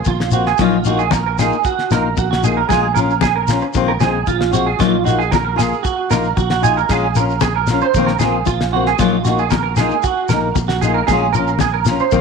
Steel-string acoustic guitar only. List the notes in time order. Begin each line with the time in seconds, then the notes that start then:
0.32 A#3 C4 F4
0.59 F#3 A#3 D#4 F4
0.85 A#3 D#4 F4
1.39 A#3 D#4 F4
1.91 A#3 D#4 F4
2.43 A#3 D#4 F4
2.69 G#3 F4, muted steel-string acoustic guitar stroke
2.97 C#4 F4
3.49 C#4 F4
3.74 D#3 G#3 C4 F4
4.00 G#3 C4 F4
4.51 G#3 C4 F4
4.79 F#3 A#3 D#4 F4
5.04 A#3 D#4 F4
5.56 A#3 F4
6.10 A#3 D#4 F4
6.62 D#4 F4
6.90 G#3 C#4 F4
7.17 C#4 F4
7.70 C#4 F4
7.96 D#3 A#3 C4 F4
8.21 A#3 C4 F4
8.74 A#3 C4 F4
9.00 F#3 A#3 D#4 F4
9.26 A#3 D#4 F4
9.78 A#3 D#4 F4
10.31 A#3 D#4, muted steel-string acoustic guitar stroke
10.83 A#3 D#4 F4
11.10 G#3 C#4 F4
11.35 C#4 F4
11.88 C#4 F4
12.12 D#3 A#3 C4 F4